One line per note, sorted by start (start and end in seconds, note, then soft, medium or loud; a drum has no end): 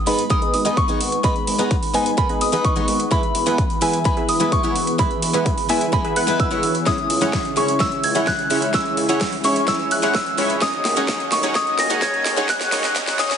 0.00 3.08 G#3 medium
0.00 3.08 D#4 medium
0.00 3.08 B4 medium
0.00 riser medium
0.06 0.24 G#2 medium
0.06 0.22 G#3 medium
0.06 0.39 B3 medium
0.06 0.22 B3 medium
0.06 0.22 D#4 medium
0.06 0.39 D#4 medium
0.06 0.39 G#4 medium
0.06 0.39 B4 medium
0.06 0.22 B4 medium
0.06 0.39 D#5 medium
0.06 0.31 B5 medium
0.06 open hi-hat loud
0.19 closed hi-hat medium
0.30 0.40 G#3 medium
0.30 0.40 B3 medium
0.30 0.40 D#4 medium
0.30 0.40 A#4 medium
0.30 0.53 D#6 medium
0.30 kick loud
0.30 closed hi-hat soft
0.42 0.63 B3 medium
0.42 0.63 D#4 medium
0.42 0.63 G#4 medium
0.42 0.63 B4 medium
0.42 0.63 D#5 loud
0.42 closed hi-hat soft
0.54 0.71 G#1 medium
0.54 0.78 D#6 medium
0.54 open hi-hat loud
0.65 0.86 G#3 medium
0.65 0.86 B3 medium
0.65 0.86 D#4 medium
0.65 0.86 G#4 medium
0.65 0.86 B4 medium
0.65 0.86 B4 loud
0.65 0.86 D#5 medium
0.65 closed hi-hat medium
0.77 1.26 C#6 medium
0.77 kick loud
0.77 closed hi-hat soft
0.88 0.98 G#3 medium
0.88 1.21 B3 medium
0.88 0.98 B3 medium
0.88 0.98 D#4 medium
0.88 1.21 D#4 medium
0.88 1.21 G#4 medium
0.88 1.21 B4 medium
0.88 0.99 C#5 medium
0.88 1.21 F#5 medium
0.88 closed hi-hat soft
1.01 1.18 G#1 medium
1.01 open hi-hat medium
1.12 closed hi-hat soft
1.23 1.33 G#3 medium
1.23 1.33 B3 medium
1.23 1.56 B3 medium
1.23 1.56 D#4 medium
1.23 1.34 D#4 medium
1.23 1.56 G#4 medium
1.23 1.56 B4 medium
1.23 1.34 B4 medium
1.23 1.56 D#5 loud
1.23 1.97 B5 medium
1.23 kick loud
1.23 closed hi-hat soft
1.36 closed hi-hat soft
1.47 1.65 G#1 loud
1.47 open hi-hat loud
1.58 1.74 G#3 medium
1.58 1.74 B3 medium
1.58 1.74 D#4 medium
1.58 1.74 G#4 medium
1.58 1.74 B4 medium
1.58 1.75 B4 medium
1.58 1.74 F#5 medium
1.58 closed hi-hat medium
1.71 kick loud
1.71 closed hi-hat medium
1.83 open hi-hat medium
1.94 2.12 G#2 loud
1.94 2.09 G#3 medium
1.94 2.09 B3 medium
1.94 2.27 B3 medium
1.94 2.10 D#4 medium
1.94 2.27 D#4 medium
1.94 2.27 G#4 medium
1.94 2.27 B4 medium
1.94 2.10 B4 medium
1.94 2.27 D#5 medium
1.94 2.19 G#5 medium
1.94 open hi-hat loud
2.06 closed hi-hat medium
2.17 2.27 G#3 medium
2.17 2.27 B3 medium
2.17 2.27 D#4 medium
2.17 2.27 A#4 medium
2.17 2.40 B5 medium
2.17 kick loud
2.17 closed hi-hat soft
2.29 2.50 B3 medium
2.29 2.50 D#4 medium
2.29 2.50 G#4 medium
2.29 2.50 B4 medium
2.29 2.50 D#5 loud
2.29 closed hi-hat soft
2.41 2.59 G#1 medium
2.41 2.65 D#6 medium
2.41 open hi-hat loud
2.52 2.73 G#3 loud
2.52 2.73 B3 medium
2.52 2.74 B3 medium
2.52 2.74 D#4 medium
2.52 2.74 G#4 medium
2.52 2.74 B4 medium
2.52 2.74 B4 loud
2.52 2.74 D#5 medium
2.52 closed hi-hat soft
2.65 3.13 C#6 medium
2.65 kick loud
2.65 closed hi-hat soft
2.76 2.85 G#3 medium
2.76 3.09 B3 medium
2.76 2.86 B3 medium
2.76 2.86 D#4 medium
2.76 3.09 D#4 medium
2.76 3.09 G#4 medium
2.76 3.09 B4 medium
2.76 2.86 C#5 loud
2.76 3.09 F#5 medium
2.76 closed hi-hat soft
2.88 3.06 G#1 medium
2.88 open hi-hat loud
3.00 closed hi-hat soft
3.11 6.83 E3 medium
3.11 3.21 G#3 medium
3.11 6.83 B3 medium
3.11 3.44 B3 medium
3.11 3.21 B3 medium
3.11 3.21 E4 medium
3.11 3.44 E4 medium
3.11 6.83 G#4 medium
3.11 3.44 G#4 medium
3.11 3.44 B4 medium
3.11 3.21 B4 medium
3.11 3.44 E5 medium
3.11 3.84 B5 medium
3.11 kick loud
3.11 closed hi-hat soft
3.23 closed hi-hat soft
3.35 3.52 E1 loud
3.35 open hi-hat loud
3.46 3.62 G#3 medium
3.46 3.62 B3 medium
3.46 3.61 B3 medium
3.46 3.62 E4 medium
3.46 3.61 E4 medium
3.46 3.61 G#4 medium
3.46 3.61 B4 medium
3.46 3.62 B4 medium
3.46 3.61 F#5 medium
3.46 closed hi-hat soft
3.58 kick loud
3.58 closed hi-hat medium
3.70 closed hi-hat soft
3.81 3.99 E2 medium
3.81 3.97 G#3 medium
3.81 3.97 B3 medium
3.81 4.14 B3 medium
3.81 3.97 E4 medium
3.81 4.14 E4 medium
3.81 4.14 G#4 medium
3.81 4.14 B4 medium
3.81 3.97 B4 medium
3.81 4.14 E5 medium
3.81 4.06 G#5 medium
3.81 open hi-hat loud
3.93 closed hi-hat soft
4.04 4.14 G#3 medium
4.04 4.15 B3 medium
4.04 4.15 E4 medium
4.04 4.15 G#4 medium
4.04 4.29 B5 medium
4.04 kick loud
4.04 closed hi-hat soft
4.17 4.38 B3 medium
4.17 4.38 E4 medium
4.17 4.38 G#4 medium
4.17 4.38 B4 medium
4.17 4.38 E5 loud
4.17 closed hi-hat soft
4.29 4.46 E1 medium
4.29 4.53 D#6 medium
4.29 open hi-hat loud
4.40 4.61 G#3 loud
4.40 4.61 B3 medium
4.40 4.61 E4 medium
4.40 4.61 G#4 medium
4.40 4.61 B4 medium
4.40 4.61 B4 loud
4.40 4.61 E5 medium
4.40 closed hi-hat soft
4.52 5.01 C#6 medium
4.52 kick loud
4.52 closed hi-hat soft
4.63 4.73 G#3 medium
4.63 4.96 B3 medium
4.63 4.73 B3 medium
4.63 4.73 E4 medium
4.63 4.96 E4 medium
4.63 4.96 G#4 medium
4.63 4.96 B4 medium
4.63 4.74 C#5 loud
4.63 4.96 F#5 medium
4.63 closed hi-hat soft
4.76 4.93 E1 medium
4.76 open hi-hat loud
4.87 closed hi-hat soft
4.98 5.08 G#3 medium
4.98 5.08 B3 medium
4.98 5.31 B3 medium
4.98 5.09 E4 medium
4.98 5.31 E4 medium
4.98 5.31 G#4 medium
4.98 5.31 B4 medium
4.98 5.09 B4 medium
4.98 5.31 E5 loud
4.98 5.65 B5 medium
4.98 kick loud
4.98 closed hi-hat soft
5.11 closed hi-hat soft
5.22 5.40 E1 loud
5.22 open hi-hat loud
5.33 5.49 G#3 medium
5.33 5.49 B3 medium
5.33 5.49 E4 medium
5.33 5.49 G#4 medium
5.33 5.49 B4 medium
5.33 5.50 B4 medium
5.33 5.49 F#5 medium
5.33 closed hi-hat soft
5.46 kick loud
5.46 closed hi-hat soft
5.58 open hi-hat medium
5.69 5.87 E2 loud
5.69 5.84 G#3 medium
5.69 5.84 B3 medium
5.69 6.02 B3 medium
5.69 5.85 E4 medium
5.69 6.02 E4 medium
5.69 6.02 G#4 medium
5.69 6.02 B4 medium
5.69 5.85 B4 medium
5.69 6.02 E5 medium
5.69 5.94 G#5 medium
5.69 open hi-hat loud
5.81 closed hi-hat medium
5.92 6.02 G#3 medium
5.92 6.02 B3 medium
5.92 6.02 E4 medium
5.92 6.03 G#4 medium
5.92 6.17 B5 medium
5.92 kick loud
5.92 closed hi-hat soft
6.04 6.14 B3 loud
6.04 6.14 E4 medium
6.04 6.14 G#4 medium
6.04 6.14 B4 medium
6.04 6.14 E5 loud
6.04 closed hi-hat soft
6.16 6.34 E1 medium
6.16 6.49 B3 medium
6.16 6.49 E4 medium
6.16 6.49 G#4 medium
6.16 6.49 B4 medium
6.16 6.49 F#5 loud
6.16 6.41 F#6 medium
6.16 open hi-hat loud
6.27 6.48 G#3 loud
6.27 6.48 B3 medium
6.27 6.49 E4 medium
6.27 6.49 B4 loud
6.27 closed hi-hat soft
6.40 6.88 E6 medium
6.40 kick loud
6.40 closed hi-hat soft
6.51 6.60 G#3 medium
6.51 6.61 B3 medium
6.51 6.84 B3 medium
6.51 6.61 E4 medium
6.51 6.84 E4 medium
6.51 6.84 G#4 medium
6.51 6.84 B4 medium
6.51 6.84 C#5 medium
6.51 6.61 C#5 medium
6.51 closed hi-hat soft
6.63 6.80 E1 loud
6.63 open hi-hat loud
6.75 closed hi-hat soft
6.86 10.58 C#3 medium
6.86 6.96 G#3 medium
6.86 10.58 G#3 medium
6.86 6.96 C#4 medium
6.86 7.19 C#4 medium
6.86 10.58 E4 medium
6.86 7.19 E4 medium
6.86 6.96 E4 medium
6.86 7.19 G#4 medium
6.86 7.19 C#5 medium
6.86 6.96 C#5 medium
6.86 7.19 E5 medium
6.86 7.59 D#6 medium
6.86 kick loud
6.86 snare soft
6.86 closed hi-hat soft
6.98 closed hi-hat soft
7.10 7.27 C#2 medium
7.10 open hi-hat loud
7.21 7.36 G#3 medium
7.21 7.37 C#4 medium
7.21 7.36 C#4 medium
7.21 7.36 E4 medium
7.21 7.37 E4 medium
7.21 7.36 G#4 medium
7.21 7.36 C#5 medium
7.21 7.37 C#5 medium
7.21 7.36 F#5 medium
7.21 closed hi-hat soft
7.33 kick loud
7.33 snare medium
7.33 closed hi-hat medium
7.45 closed hi-hat soft
7.56 7.74 G#1 loud
7.56 7.72 G#3 medium
7.56 7.78 C#4 medium
7.56 7.72 C#4 medium
7.56 7.78 E4 medium
7.56 7.72 E4 medium
7.56 7.78 G#4 medium
7.56 7.78 C#5 medium
7.56 7.72 C#5 medium
7.56 7.78 E5 medium
7.56 7.81 C#6 medium
7.56 open hi-hat loud
7.68 closed hi-hat soft
7.79 7.89 G#3 medium
7.79 7.90 C#4 medium
7.79 8.13 C#4 medium
7.79 7.90 E4 medium
7.79 8.13 E4 medium
7.79 8.13 G#4 medium
7.79 8.13 C#5 medium
7.79 7.90 C#5 medium
7.79 8.13 E5 medium
7.79 8.05 E6 loud
7.79 kick loud
7.79 snare soft
7.79 closed hi-hat soft
7.92 closed hi-hat soft
8.04 8.21 C#2 medium
8.04 8.28 G#6 loud
8.04 open hi-hat loud
8.15 8.30 G#3 medium
8.15 8.30 C#4 medium
8.15 8.31 E4 medium
8.15 8.30 E4 medium
8.15 8.30 G#4 medium
8.15 8.30 C#5 medium
8.15 8.31 C#5 medium
8.15 8.30 F#5 medium
8.15 closed hi-hat medium
8.27 8.76 F#6 medium
8.27 kick loud
8.27 snare medium
8.27 closed hi-hat soft
8.39 closed hi-hat soft
8.50 8.68 C#2 medium
8.50 8.65 G#3 medium
8.50 8.72 C#4 medium
8.50 8.66 C#4 medium
8.50 8.66 E4 medium
8.50 8.72 E4 medium
8.50 8.72 G#4 medium
8.50 8.72 C#5 medium
8.50 8.66 C#5 medium
8.50 8.72 E5 medium
8.50 open hi-hat loud
8.62 closed hi-hat soft
8.73 8.83 G#3 medium
8.73 9.06 C#4 medium
8.73 8.83 C#4 medium
8.73 8.84 E4 medium
8.73 9.06 E4 medium
8.73 9.06 G#4 medium
8.73 9.06 C#5 medium
8.73 8.84 C#5 medium
8.73 9.06 E5 medium
8.73 9.47 E6 loud
8.73 kick loud
8.73 snare medium
8.73 closed hi-hat soft
8.86 closed hi-hat soft
8.97 9.15 C#2 medium
8.97 open hi-hat loud
9.09 9.24 G#3 medium
9.09 9.24 C#4 medium
9.09 9.24 E4 medium
9.09 9.24 G#4 medium
9.09 9.24 C#5 medium
9.09 9.25 C#5 medium
9.09 9.24 F#5 medium
9.09 closed hi-hat soft
9.21 kick loud
9.21 snare medium
9.21 closed hi-hat medium
9.33 open hi-hat medium
9.44 9.62 G#1 medium
9.44 9.59 G#3 medium
9.44 9.66 C#4 medium
9.44 9.59 C#4 medium
9.44 9.66 E4 medium
9.44 9.60 E4 medium
9.44 9.66 G#4 medium
9.44 9.66 C#5 medium
9.44 9.60 C#5 medium
9.44 9.66 E5 medium
9.44 9.69 C#6 loud
9.44 open hi-hat loud
9.56 closed hi-hat soft
9.67 9.77 G#3 medium
9.67 9.77 C#4 medium
9.67 10.00 C#4 medium
9.67 9.77 E4 medium
9.67 10.00 E4 medium
9.67 10.00 G#4 medium
9.67 10.00 C#5 medium
9.67 9.78 C#5 medium
9.67 10.00 E5 loud
9.67 9.92 E6 loud
9.67 kick loud
9.67 snare medium
9.67 closed hi-hat soft
9.79 closed hi-hat soft
9.91 10.09 C#2 medium
9.91 10.13 F#6 loud
9.91 open hi-hat loud
10.02 10.18 G#3 medium
10.02 10.18 C#4 medium
10.02 10.18 E4 medium
10.02 10.18 G#4 medium
10.02 10.18 C#5 medium
10.02 10.18 F#5 medium
10.02 closed hi-hat medium
10.15 10.63 E6 medium
10.15 kick loud
10.15 snare medium
10.15 closed hi-hat soft
10.26 closed hi-hat soft
10.37 10.56 C#2 medium
10.37 10.53 G#3 medium
10.37 10.53 C#4 medium
10.37 10.60 C#4 medium
10.37 10.60 E4 medium
10.37 10.53 E4 medium
10.37 10.60 G#4 medium
10.37 10.60 C#5 medium
10.37 10.54 C#5 medium
10.37 10.60 E5 medium
10.37 open hi-hat loud
10.50 closed hi-hat soft
10.61 13.38 D#3 medium
10.61 10.71 G#3 medium
10.61 13.38 A#3 medium
10.61 10.94 C#4 medium
10.61 10.71 C#4 medium
10.61 10.94 D#4 medium
10.61 10.71 D#4 medium
10.61 13.38 F#4 medium
10.61 10.94 G#4 medium
10.61 10.94 C#5 medium
10.61 10.71 C#5 medium
10.61 10.94 D#5 loud
10.61 11.34 D#6 loud
10.61 kick loud
10.61 snare medium
10.61 closed hi-hat medium
10.73 closed hi-hat soft
10.85 11.02 D#2 loud
10.85 snare medium
10.85 open hi-hat loud
10.96 11.06 G#3 medium
10.96 11.07 C#4 medium
10.96 11.06 C#4 medium
10.96 11.07 D#4 medium
10.96 11.07 G#4 medium
10.96 11.07 C#5 medium
10.96 11.07 F#5 medium
10.96 closed hi-hat medium
11.08 11.18 G#3 medium
11.08 11.18 C#4 medium
11.08 11.41 C#4 medium
11.08 11.41 D#4 medium
11.08 11.18 D#4 medium
11.08 11.41 C#5 medium
11.08 11.18 C#5 medium
11.08 11.41 D#5 medium
11.08 kick loud
11.08 snare medium
11.08 closed hi-hat medium
11.20 closed hi-hat soft
11.32 11.49 D#1 loud
11.32 11.56 C#6 loud
11.32 snare medium
11.32 open hi-hat loud
11.43 11.53 G#3 loud
11.43 11.53 C#4 medium
11.43 11.53 D#4 medium
11.43 11.53 G#4 medium
11.43 11.53 C#5 medium
11.43 11.54 C#5 loud
11.43 11.53 F#5 medium
11.43 closed hi-hat medium
11.55 11.65 G#3 medium
11.55 11.65 C#4 medium
11.55 11.88 C#4 medium
11.55 11.88 D#4 medium
11.55 11.65 D#4 medium
11.55 11.88 C#5 medium
11.55 11.65 C#5 medium
11.55 11.88 D#5 loud
11.55 11.80 D#6 loud
11.55 kick loud
11.55 snare medium
11.55 closed hi-hat medium
11.67 closed hi-hat soft
11.79 11.96 D#2 medium
11.79 12.03 A#6 loud
11.79 snare medium
11.79 open hi-hat loud
11.90 12.00 G#3 medium
11.90 12.00 C#4 medium
11.90 12.00 D#4 medium
11.90 12.00 G#4 medium
11.90 12.00 C#5 medium
11.90 12.01 C#5 medium
11.90 12.00 F#5 loud
11.90 closed hi-hat medium
12.01 12.11 G#3 medium
12.01 12.12 C#4 medium
12.01 12.35 C#4 medium
12.01 12.35 D#4 medium
12.01 12.12 D#4 medium
12.01 12.35 C#5 medium
12.01 12.12 C#5 loud
12.01 12.35 D#5 loud
12.01 12.51 G#6 loud
12.01 kick loud
12.01 snare medium
12.01 closed hi-hat medium
12.14 closed hi-hat soft
12.26 12.43 D#2 medium
12.26 snare medium
12.26 open hi-hat loud
12.36 12.47 G#3 loud
12.36 12.47 C#4 medium
12.36 12.47 D#4 medium
12.36 12.47 G#4 medium
12.36 12.47 C#5 medium
12.36 12.47 C#5 loud
12.36 12.47 F#5 loud
12.36 closed hi-hat medium
12.48 12.58 G#3 medium
12.48 12.58 C#4 medium
12.48 12.59 D#4 medium
12.48 12.59 C#5 loud
12.48 13.22 F#6 loud
12.48 kick loud
12.48 snare medium
12.48 closed hi-hat medium
12.61 snare medium
12.61 closed hi-hat soft
12.71 12.90 D#2 loud
12.71 12.82 G#3 medium
12.71 12.94 C#4 medium
12.71 12.82 C#4 medium
12.71 12.94 D#4 medium
12.71 12.82 D#4 medium
12.71 12.94 G#4 medium
12.71 12.94 C#5 medium
12.71 12.82 C#5 medium
12.71 12.94 D#5 loud
12.71 snare medium
12.71 open hi-hat loud
12.84 snare medium
12.84 closed hi-hat medium
12.95 13.05 G#3 medium
12.95 13.17 C#4 medium
12.95 13.05 C#4 medium
12.95 13.05 D#4 medium
12.95 13.17 D#4 medium
12.95 13.17 G#4 medium
12.95 13.17 C#5 medium
12.95 13.06 C#5 medium
12.95 13.17 D#5 loud
12.95 kick loud
12.95 snare loud
12.95 closed hi-hat medium
13.07 snare medium
13.07 open hi-hat medium
13.19 13.37 D#1 loud
13.19 13.29 G#3 medium
13.19 13.38 C#4 medium
13.19 13.29 C#4 medium
13.19 13.38 D#4 medium
13.19 13.29 D#4 medium
13.19 13.38 G#4 medium
13.19 13.38 C#5 medium
13.19 13.29 C#5 medium
13.19 13.38 D#5 loud
13.19 13.38 D#6 loud
13.19 snare loud
13.19 open hi-hat loud
13.31 snare medium
13.31 closed hi-hat medium